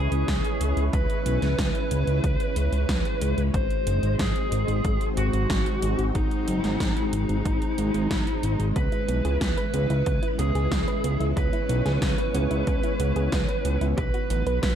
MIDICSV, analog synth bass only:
0, 0, Header, 1, 2, 480
1, 0, Start_track
1, 0, Key_signature, 4, "minor"
1, 0, Tempo, 652174
1, 687, Time_signature, 4, 2, 24, 8
1, 10857, End_track
2, 0, Start_track
2, 0, Title_t, "Analog synth bass"
2, 0, Program_c, 0, 38
2, 87, Note_on_c, 0, 37, 81
2, 183, Note_off_c, 0, 37, 0
2, 208, Note_on_c, 0, 37, 95
2, 303, Note_off_c, 0, 37, 0
2, 447, Note_on_c, 0, 37, 89
2, 543, Note_off_c, 0, 37, 0
2, 566, Note_on_c, 0, 37, 81
2, 663, Note_off_c, 0, 37, 0
2, 688, Note_on_c, 0, 37, 102
2, 783, Note_off_c, 0, 37, 0
2, 927, Note_on_c, 0, 35, 93
2, 1023, Note_off_c, 0, 35, 0
2, 1047, Note_on_c, 0, 37, 74
2, 1143, Note_off_c, 0, 37, 0
2, 1167, Note_on_c, 0, 37, 97
2, 1263, Note_off_c, 0, 37, 0
2, 1407, Note_on_c, 0, 37, 93
2, 1503, Note_off_c, 0, 37, 0
2, 1527, Note_on_c, 0, 37, 81
2, 1623, Note_off_c, 0, 37, 0
2, 1647, Note_on_c, 0, 37, 98
2, 1743, Note_off_c, 0, 37, 0
2, 1886, Note_on_c, 0, 37, 92
2, 1983, Note_off_c, 0, 37, 0
2, 2006, Note_on_c, 0, 37, 87
2, 2102, Note_off_c, 0, 37, 0
2, 2127, Note_on_c, 0, 37, 95
2, 2223, Note_off_c, 0, 37, 0
2, 2366, Note_on_c, 0, 37, 89
2, 2463, Note_off_c, 0, 37, 0
2, 2486, Note_on_c, 0, 37, 83
2, 2583, Note_off_c, 0, 37, 0
2, 2607, Note_on_c, 0, 32, 99
2, 2703, Note_off_c, 0, 32, 0
2, 2847, Note_on_c, 0, 30, 97
2, 2943, Note_off_c, 0, 30, 0
2, 2967, Note_on_c, 0, 32, 79
2, 3063, Note_off_c, 0, 32, 0
2, 3087, Note_on_c, 0, 32, 100
2, 3183, Note_off_c, 0, 32, 0
2, 3327, Note_on_c, 0, 32, 93
2, 3423, Note_off_c, 0, 32, 0
2, 3447, Note_on_c, 0, 32, 85
2, 3543, Note_off_c, 0, 32, 0
2, 3567, Note_on_c, 0, 32, 102
2, 3663, Note_off_c, 0, 32, 0
2, 3807, Note_on_c, 0, 32, 94
2, 3903, Note_off_c, 0, 32, 0
2, 3928, Note_on_c, 0, 32, 82
2, 4023, Note_off_c, 0, 32, 0
2, 4047, Note_on_c, 0, 32, 97
2, 4143, Note_off_c, 0, 32, 0
2, 4287, Note_on_c, 0, 32, 89
2, 4383, Note_off_c, 0, 32, 0
2, 4408, Note_on_c, 0, 32, 79
2, 4503, Note_off_c, 0, 32, 0
2, 4527, Note_on_c, 0, 32, 100
2, 4623, Note_off_c, 0, 32, 0
2, 4768, Note_on_c, 0, 30, 91
2, 4863, Note_off_c, 0, 30, 0
2, 4887, Note_on_c, 0, 32, 74
2, 4983, Note_off_c, 0, 32, 0
2, 5007, Note_on_c, 0, 32, 101
2, 5103, Note_off_c, 0, 32, 0
2, 5247, Note_on_c, 0, 32, 94
2, 5343, Note_off_c, 0, 32, 0
2, 5367, Note_on_c, 0, 32, 85
2, 5463, Note_off_c, 0, 32, 0
2, 5487, Note_on_c, 0, 32, 95
2, 5583, Note_off_c, 0, 32, 0
2, 5728, Note_on_c, 0, 32, 92
2, 5823, Note_off_c, 0, 32, 0
2, 5848, Note_on_c, 0, 32, 87
2, 5943, Note_off_c, 0, 32, 0
2, 5967, Note_on_c, 0, 32, 97
2, 6063, Note_off_c, 0, 32, 0
2, 6207, Note_on_c, 0, 32, 93
2, 6303, Note_off_c, 0, 32, 0
2, 6327, Note_on_c, 0, 32, 83
2, 6423, Note_off_c, 0, 32, 0
2, 6447, Note_on_c, 0, 37, 100
2, 6543, Note_off_c, 0, 37, 0
2, 6687, Note_on_c, 0, 35, 91
2, 6783, Note_off_c, 0, 35, 0
2, 6807, Note_on_c, 0, 37, 77
2, 6903, Note_off_c, 0, 37, 0
2, 6928, Note_on_c, 0, 37, 94
2, 7023, Note_off_c, 0, 37, 0
2, 7167, Note_on_c, 0, 37, 91
2, 7263, Note_off_c, 0, 37, 0
2, 7288, Note_on_c, 0, 37, 85
2, 7383, Note_off_c, 0, 37, 0
2, 7407, Note_on_c, 0, 37, 98
2, 7503, Note_off_c, 0, 37, 0
2, 7647, Note_on_c, 0, 37, 91
2, 7743, Note_off_c, 0, 37, 0
2, 7766, Note_on_c, 0, 37, 85
2, 7863, Note_off_c, 0, 37, 0
2, 7887, Note_on_c, 0, 37, 103
2, 7983, Note_off_c, 0, 37, 0
2, 8127, Note_on_c, 0, 37, 90
2, 8223, Note_off_c, 0, 37, 0
2, 8247, Note_on_c, 0, 37, 79
2, 8343, Note_off_c, 0, 37, 0
2, 8367, Note_on_c, 0, 37, 103
2, 8463, Note_off_c, 0, 37, 0
2, 8606, Note_on_c, 0, 35, 99
2, 8703, Note_off_c, 0, 35, 0
2, 8726, Note_on_c, 0, 37, 77
2, 8823, Note_off_c, 0, 37, 0
2, 8847, Note_on_c, 0, 37, 100
2, 8943, Note_off_c, 0, 37, 0
2, 9087, Note_on_c, 0, 37, 94
2, 9183, Note_off_c, 0, 37, 0
2, 9207, Note_on_c, 0, 37, 77
2, 9303, Note_off_c, 0, 37, 0
2, 9327, Note_on_c, 0, 37, 100
2, 9423, Note_off_c, 0, 37, 0
2, 9566, Note_on_c, 0, 37, 89
2, 9663, Note_off_c, 0, 37, 0
2, 9687, Note_on_c, 0, 37, 85
2, 9783, Note_off_c, 0, 37, 0
2, 9807, Note_on_c, 0, 37, 97
2, 9903, Note_off_c, 0, 37, 0
2, 10047, Note_on_c, 0, 37, 96
2, 10143, Note_off_c, 0, 37, 0
2, 10167, Note_on_c, 0, 37, 80
2, 10263, Note_off_c, 0, 37, 0
2, 10287, Note_on_c, 0, 35, 102
2, 10383, Note_off_c, 0, 35, 0
2, 10527, Note_on_c, 0, 33, 94
2, 10623, Note_off_c, 0, 33, 0
2, 10646, Note_on_c, 0, 35, 79
2, 10743, Note_off_c, 0, 35, 0
2, 10767, Note_on_c, 0, 35, 97
2, 10857, Note_off_c, 0, 35, 0
2, 10857, End_track
0, 0, End_of_file